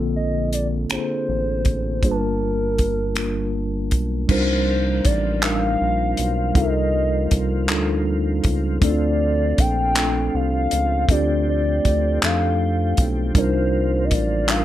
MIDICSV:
0, 0, Header, 1, 6, 480
1, 0, Start_track
1, 0, Tempo, 754717
1, 1291, Time_signature, 6, 3, 24, 8
1, 9317, End_track
2, 0, Start_track
2, 0, Title_t, "Soft synth lead"
2, 0, Program_c, 0, 80
2, 102, Note_on_c, 0, 75, 106
2, 320, Note_off_c, 0, 75, 0
2, 340, Note_on_c, 0, 74, 88
2, 429, Note_off_c, 0, 74, 0
2, 581, Note_on_c, 0, 72, 110
2, 1297, Note_on_c, 0, 70, 96
2, 1306, Note_off_c, 0, 72, 0
2, 2494, Note_off_c, 0, 70, 0
2, 2737, Note_on_c, 0, 72, 103
2, 3214, Note_on_c, 0, 74, 95
2, 3224, Note_off_c, 0, 72, 0
2, 3454, Note_on_c, 0, 77, 126
2, 3464, Note_off_c, 0, 74, 0
2, 4173, Note_on_c, 0, 75, 100
2, 4183, Note_off_c, 0, 77, 0
2, 4892, Note_off_c, 0, 75, 0
2, 5620, Note_on_c, 0, 74, 101
2, 6102, Note_on_c, 0, 79, 118
2, 6111, Note_off_c, 0, 74, 0
2, 6582, Note_on_c, 0, 77, 108
2, 6591, Note_off_c, 0, 79, 0
2, 7062, Note_on_c, 0, 74, 104
2, 7071, Note_off_c, 0, 77, 0
2, 7296, Note_off_c, 0, 74, 0
2, 7308, Note_on_c, 0, 74, 104
2, 7754, Note_off_c, 0, 74, 0
2, 7788, Note_on_c, 0, 77, 115
2, 8294, Note_off_c, 0, 77, 0
2, 8506, Note_on_c, 0, 72, 98
2, 8933, Note_on_c, 0, 75, 67
2, 8942, Note_off_c, 0, 72, 0
2, 8985, Note_on_c, 0, 74, 86
2, 8995, Note_off_c, 0, 75, 0
2, 9221, Note_on_c, 0, 77, 109
2, 9231, Note_off_c, 0, 74, 0
2, 9317, Note_off_c, 0, 77, 0
2, 9317, End_track
3, 0, Start_track
3, 0, Title_t, "Tine electric piano"
3, 0, Program_c, 1, 4
3, 0, Control_c, 1, 64, 127
3, 0, Note_on_c, 1, 50, 76
3, 0, Note_on_c, 1, 58, 83
3, 0, Note_on_c, 1, 60, 79
3, 0, Note_on_c, 1, 65, 75
3, 0, Note_on_c, 1, 69, 91
3, 281, Note_off_c, 1, 58, 0
3, 284, Note_off_c, 1, 60, 0
3, 287, Note_off_c, 1, 50, 0
3, 290, Note_off_c, 1, 65, 0
3, 292, Note_off_c, 1, 69, 0
3, 566, Note_on_c, 1, 58, 56
3, 570, Note_on_c, 1, 60, 55
3, 576, Note_on_c, 1, 62, 51
3, 583, Note_on_c, 1, 65, 52
3, 587, Note_on_c, 1, 68, 53
3, 621, Note_off_c, 1, 68, 0
3, 627, Note_on_c, 1, 69, 65
3, 1001, Note_off_c, 1, 58, 0
3, 1003, Note_off_c, 1, 60, 0
3, 1006, Note_off_c, 1, 62, 0
3, 1010, Note_off_c, 1, 65, 0
3, 1032, Note_off_c, 1, 69, 0
3, 1282, Note_on_c, 1, 55, 66
3, 1288, Note_on_c, 1, 58, 68
3, 1294, Note_on_c, 1, 62, 60
3, 1298, Note_on_c, 1, 65, 67
3, 1299, Control_c, 1, 64, 0
3, 1305, Note_on_c, 1, 68, 61
3, 1339, Note_off_c, 1, 68, 0
3, 1345, Note_on_c, 1, 81, 75
3, 1404, Control_c, 1, 64, 127
3, 1719, Note_off_c, 1, 55, 0
3, 1722, Note_off_c, 1, 58, 0
3, 1725, Note_off_c, 1, 62, 0
3, 1727, Note_off_c, 1, 65, 0
3, 1751, Note_off_c, 1, 81, 0
3, 2005, Note_on_c, 1, 55, 66
3, 2010, Note_on_c, 1, 58, 58
3, 2017, Note_on_c, 1, 62, 56
3, 2021, Note_on_c, 1, 65, 61
3, 2028, Note_on_c, 1, 70, 72
3, 2441, Note_off_c, 1, 55, 0
3, 2443, Note_off_c, 1, 58, 0
3, 2447, Note_off_c, 1, 62, 0
3, 2449, Note_off_c, 1, 65, 0
3, 2452, Note_off_c, 1, 70, 0
3, 2721, Note_on_c, 1, 55, 77
3, 2726, Note_on_c, 1, 62, 70
3, 2732, Note_on_c, 1, 63, 70
3, 2737, Note_on_c, 1, 65, 68
3, 2738, Control_c, 1, 64, 0
3, 2744, Note_on_c, 1, 70, 78
3, 2851, Control_c, 1, 64, 127
3, 3159, Note_off_c, 1, 55, 0
3, 3161, Note_off_c, 1, 62, 0
3, 3164, Note_off_c, 1, 63, 0
3, 3167, Note_off_c, 1, 65, 0
3, 3170, Note_off_c, 1, 70, 0
3, 3440, Note_on_c, 1, 55, 61
3, 3448, Note_on_c, 1, 62, 58
3, 3452, Note_on_c, 1, 63, 56
3, 3459, Note_on_c, 1, 65, 53
3, 3464, Note_on_c, 1, 70, 69
3, 3878, Note_off_c, 1, 55, 0
3, 3882, Note_off_c, 1, 62, 0
3, 3884, Note_off_c, 1, 63, 0
3, 3888, Note_off_c, 1, 65, 0
3, 3890, Note_off_c, 1, 70, 0
3, 4158, Note_on_c, 1, 55, 77
3, 4163, Note_on_c, 1, 60, 66
3, 4167, Note_on_c, 1, 63, 67
3, 4175, Note_on_c, 1, 65, 70
3, 4180, Note_on_c, 1, 69, 71
3, 4217, Note_off_c, 1, 69, 0
3, 4220, Note_on_c, 1, 70, 87
3, 4597, Note_off_c, 1, 55, 0
3, 4600, Note_off_c, 1, 60, 0
3, 4602, Note_off_c, 1, 63, 0
3, 4606, Note_off_c, 1, 65, 0
3, 4628, Note_off_c, 1, 70, 0
3, 4882, Note_on_c, 1, 55, 78
3, 4888, Note_on_c, 1, 62, 67
3, 4891, Note_on_c, 1, 63, 68
3, 4898, Note_on_c, 1, 65, 63
3, 4903, Note_on_c, 1, 69, 87
3, 5319, Note_off_c, 1, 55, 0
3, 5322, Note_off_c, 1, 62, 0
3, 5324, Note_off_c, 1, 63, 0
3, 5327, Note_off_c, 1, 65, 0
3, 5330, Note_off_c, 1, 69, 0
3, 5602, Note_on_c, 1, 57, 75
3, 5609, Note_on_c, 1, 60, 76
3, 5615, Note_on_c, 1, 62, 68
3, 5619, Control_c, 1, 64, 0
3, 5620, Note_on_c, 1, 63, 61
3, 5626, Note_on_c, 1, 69, 91
3, 5657, Note_off_c, 1, 63, 0
3, 5663, Note_on_c, 1, 65, 74
3, 5734, Control_c, 1, 64, 127
3, 6039, Note_off_c, 1, 57, 0
3, 6043, Note_off_c, 1, 60, 0
3, 6046, Note_off_c, 1, 62, 0
3, 6051, Note_off_c, 1, 69, 0
3, 6070, Note_off_c, 1, 65, 0
3, 6326, Note_on_c, 1, 57, 63
3, 6332, Note_on_c, 1, 60, 57
3, 6338, Note_on_c, 1, 62, 60
3, 6344, Note_on_c, 1, 65, 59
3, 6351, Note_on_c, 1, 69, 70
3, 6761, Note_off_c, 1, 57, 0
3, 6764, Note_off_c, 1, 60, 0
3, 6767, Note_off_c, 1, 62, 0
3, 6770, Note_off_c, 1, 65, 0
3, 6774, Note_off_c, 1, 69, 0
3, 7049, Note_on_c, 1, 57, 78
3, 7056, Note_on_c, 1, 60, 69
3, 7062, Note_on_c, 1, 62, 68
3, 7067, Note_on_c, 1, 65, 72
3, 7072, Note_on_c, 1, 67, 85
3, 7483, Note_off_c, 1, 57, 0
3, 7486, Note_off_c, 1, 60, 0
3, 7489, Note_off_c, 1, 62, 0
3, 7492, Note_off_c, 1, 65, 0
3, 7494, Note_off_c, 1, 67, 0
3, 7769, Note_on_c, 1, 57, 61
3, 7773, Note_on_c, 1, 60, 59
3, 7780, Note_on_c, 1, 62, 58
3, 7786, Note_on_c, 1, 63, 42
3, 7790, Note_on_c, 1, 69, 69
3, 7820, Note_off_c, 1, 63, 0
3, 7824, Note_on_c, 1, 65, 52
3, 8203, Note_off_c, 1, 57, 0
3, 8205, Note_off_c, 1, 60, 0
3, 8208, Note_off_c, 1, 62, 0
3, 8213, Note_off_c, 1, 69, 0
3, 8230, Note_off_c, 1, 65, 0
3, 8484, Note_on_c, 1, 55, 73
3, 8488, Note_on_c, 1, 62, 68
3, 8493, Note_on_c, 1, 63, 68
3, 8500, Control_c, 1, 64, 0
3, 8502, Note_on_c, 1, 65, 70
3, 8505, Note_on_c, 1, 70, 85
3, 8617, Control_c, 1, 64, 127
3, 8920, Note_off_c, 1, 55, 0
3, 8922, Note_off_c, 1, 62, 0
3, 8925, Note_off_c, 1, 63, 0
3, 8929, Note_off_c, 1, 65, 0
3, 8931, Note_off_c, 1, 70, 0
3, 9209, Note_on_c, 1, 55, 60
3, 9214, Note_on_c, 1, 62, 58
3, 9219, Note_on_c, 1, 63, 55
3, 9224, Note_on_c, 1, 65, 60
3, 9230, Note_on_c, 1, 69, 52
3, 9262, Note_off_c, 1, 69, 0
3, 9272, Note_on_c, 1, 70, 73
3, 9317, Note_off_c, 1, 55, 0
3, 9317, Note_off_c, 1, 62, 0
3, 9317, Note_off_c, 1, 63, 0
3, 9317, Note_off_c, 1, 65, 0
3, 9317, Note_off_c, 1, 70, 0
3, 9317, End_track
4, 0, Start_track
4, 0, Title_t, "Tonewheel organ"
4, 0, Program_c, 2, 16
4, 2731, Note_on_c, 2, 65, 66
4, 2733, Note_on_c, 2, 60, 59
4, 2735, Note_on_c, 2, 53, 57
4, 2735, Note_on_c, 2, 58, 64
4, 5586, Note_off_c, 2, 65, 0
4, 5588, Note_off_c, 2, 58, 0
4, 5606, Note_on_c, 2, 65, 68
4, 5609, Note_on_c, 2, 57, 59
4, 7034, Note_off_c, 2, 65, 0
4, 7053, Note_on_c, 2, 67, 74
4, 8465, Note_off_c, 2, 57, 0
4, 8478, Note_off_c, 2, 67, 0
4, 8493, Note_on_c, 2, 65, 67
4, 8495, Note_on_c, 2, 58, 56
4, 9317, Note_off_c, 2, 53, 0
4, 9317, Note_off_c, 2, 58, 0
4, 9317, Note_off_c, 2, 60, 0
4, 9317, Note_off_c, 2, 65, 0
4, 9317, End_track
5, 0, Start_track
5, 0, Title_t, "Analog synth bass"
5, 0, Program_c, 3, 38
5, 0, Note_on_c, 3, 34, 98
5, 548, Note_off_c, 3, 34, 0
5, 580, Note_on_c, 3, 33, 46
5, 626, Note_off_c, 3, 33, 0
5, 820, Note_on_c, 3, 33, 89
5, 1294, Note_on_c, 3, 31, 103
5, 1304, Note_off_c, 3, 33, 0
5, 2499, Note_on_c, 3, 35, 84
5, 2508, Note_off_c, 3, 31, 0
5, 2711, Note_off_c, 3, 35, 0
5, 2733, Note_on_c, 3, 36, 97
5, 3186, Note_off_c, 3, 36, 0
5, 3220, Note_on_c, 3, 33, 106
5, 3670, Note_off_c, 3, 33, 0
5, 3698, Note_on_c, 3, 34, 103
5, 3911, Note_off_c, 3, 34, 0
5, 3937, Note_on_c, 3, 35, 88
5, 4150, Note_off_c, 3, 35, 0
5, 4175, Note_on_c, 3, 36, 107
5, 4627, Note_off_c, 3, 36, 0
5, 4660, Note_on_c, 3, 36, 99
5, 4897, Note_on_c, 3, 38, 95
5, 4907, Note_off_c, 3, 36, 0
5, 5349, Note_off_c, 3, 38, 0
5, 5378, Note_on_c, 3, 37, 91
5, 5591, Note_off_c, 3, 37, 0
5, 5614, Note_on_c, 3, 38, 114
5, 6067, Note_off_c, 3, 38, 0
5, 6103, Note_on_c, 3, 34, 93
5, 6552, Note_off_c, 3, 34, 0
5, 6580, Note_on_c, 3, 36, 92
5, 6792, Note_off_c, 3, 36, 0
5, 6823, Note_on_c, 3, 37, 91
5, 7034, Note_off_c, 3, 37, 0
5, 7057, Note_on_c, 3, 38, 100
5, 7509, Note_off_c, 3, 38, 0
5, 7544, Note_on_c, 3, 38, 89
5, 7754, Note_off_c, 3, 38, 0
5, 7780, Note_on_c, 3, 41, 98
5, 8230, Note_off_c, 3, 41, 0
5, 8262, Note_on_c, 3, 35, 90
5, 8473, Note_off_c, 3, 35, 0
5, 8496, Note_on_c, 3, 36, 101
5, 8985, Note_on_c, 3, 33, 86
5, 8994, Note_off_c, 3, 36, 0
5, 9317, Note_off_c, 3, 33, 0
5, 9317, End_track
6, 0, Start_track
6, 0, Title_t, "Drums"
6, 335, Note_on_c, 9, 42, 66
6, 398, Note_off_c, 9, 42, 0
6, 570, Note_on_c, 9, 42, 63
6, 577, Note_on_c, 9, 26, 87
6, 634, Note_off_c, 9, 42, 0
6, 641, Note_off_c, 9, 26, 0
6, 1049, Note_on_c, 9, 42, 64
6, 1054, Note_on_c, 9, 36, 90
6, 1112, Note_off_c, 9, 42, 0
6, 1117, Note_off_c, 9, 36, 0
6, 1289, Note_on_c, 9, 36, 110
6, 1289, Note_on_c, 9, 42, 64
6, 1352, Note_off_c, 9, 36, 0
6, 1353, Note_off_c, 9, 42, 0
6, 1771, Note_on_c, 9, 42, 60
6, 1775, Note_on_c, 9, 36, 72
6, 1835, Note_off_c, 9, 42, 0
6, 1839, Note_off_c, 9, 36, 0
6, 2007, Note_on_c, 9, 42, 63
6, 2014, Note_on_c, 9, 26, 97
6, 2070, Note_off_c, 9, 42, 0
6, 2077, Note_off_c, 9, 26, 0
6, 2488, Note_on_c, 9, 42, 67
6, 2493, Note_on_c, 9, 36, 87
6, 2552, Note_off_c, 9, 42, 0
6, 2557, Note_off_c, 9, 36, 0
6, 2727, Note_on_c, 9, 49, 100
6, 2728, Note_on_c, 9, 36, 113
6, 2791, Note_off_c, 9, 49, 0
6, 2792, Note_off_c, 9, 36, 0
6, 3210, Note_on_c, 9, 42, 78
6, 3214, Note_on_c, 9, 36, 88
6, 3273, Note_off_c, 9, 42, 0
6, 3277, Note_off_c, 9, 36, 0
6, 3446, Note_on_c, 9, 42, 74
6, 3453, Note_on_c, 9, 39, 104
6, 3510, Note_off_c, 9, 42, 0
6, 3517, Note_off_c, 9, 39, 0
6, 3927, Note_on_c, 9, 42, 71
6, 3990, Note_off_c, 9, 42, 0
6, 4167, Note_on_c, 9, 36, 108
6, 4168, Note_on_c, 9, 42, 79
6, 4231, Note_off_c, 9, 36, 0
6, 4232, Note_off_c, 9, 42, 0
6, 4650, Note_on_c, 9, 42, 75
6, 4654, Note_on_c, 9, 36, 86
6, 4713, Note_off_c, 9, 42, 0
6, 4717, Note_off_c, 9, 36, 0
6, 4885, Note_on_c, 9, 42, 72
6, 4892, Note_on_c, 9, 39, 111
6, 4949, Note_off_c, 9, 42, 0
6, 4955, Note_off_c, 9, 39, 0
6, 5366, Note_on_c, 9, 42, 71
6, 5372, Note_on_c, 9, 36, 96
6, 5429, Note_off_c, 9, 42, 0
6, 5436, Note_off_c, 9, 36, 0
6, 5607, Note_on_c, 9, 42, 80
6, 5608, Note_on_c, 9, 36, 123
6, 5671, Note_off_c, 9, 42, 0
6, 5672, Note_off_c, 9, 36, 0
6, 6094, Note_on_c, 9, 42, 73
6, 6096, Note_on_c, 9, 36, 91
6, 6158, Note_off_c, 9, 42, 0
6, 6160, Note_off_c, 9, 36, 0
6, 6331, Note_on_c, 9, 42, 73
6, 6337, Note_on_c, 9, 39, 104
6, 6394, Note_off_c, 9, 42, 0
6, 6401, Note_off_c, 9, 39, 0
6, 6812, Note_on_c, 9, 42, 70
6, 6876, Note_off_c, 9, 42, 0
6, 7051, Note_on_c, 9, 36, 108
6, 7053, Note_on_c, 9, 42, 79
6, 7114, Note_off_c, 9, 36, 0
6, 7117, Note_off_c, 9, 42, 0
6, 7536, Note_on_c, 9, 42, 71
6, 7538, Note_on_c, 9, 36, 81
6, 7600, Note_off_c, 9, 42, 0
6, 7602, Note_off_c, 9, 36, 0
6, 7772, Note_on_c, 9, 42, 71
6, 7779, Note_on_c, 9, 39, 104
6, 7836, Note_off_c, 9, 42, 0
6, 7842, Note_off_c, 9, 39, 0
6, 8251, Note_on_c, 9, 42, 69
6, 8256, Note_on_c, 9, 36, 98
6, 8314, Note_off_c, 9, 42, 0
6, 8320, Note_off_c, 9, 36, 0
6, 8490, Note_on_c, 9, 42, 77
6, 8491, Note_on_c, 9, 36, 121
6, 8554, Note_off_c, 9, 36, 0
6, 8554, Note_off_c, 9, 42, 0
6, 8973, Note_on_c, 9, 42, 73
6, 8978, Note_on_c, 9, 36, 90
6, 9037, Note_off_c, 9, 42, 0
6, 9041, Note_off_c, 9, 36, 0
6, 9208, Note_on_c, 9, 42, 75
6, 9215, Note_on_c, 9, 39, 101
6, 9272, Note_off_c, 9, 42, 0
6, 9278, Note_off_c, 9, 39, 0
6, 9317, End_track
0, 0, End_of_file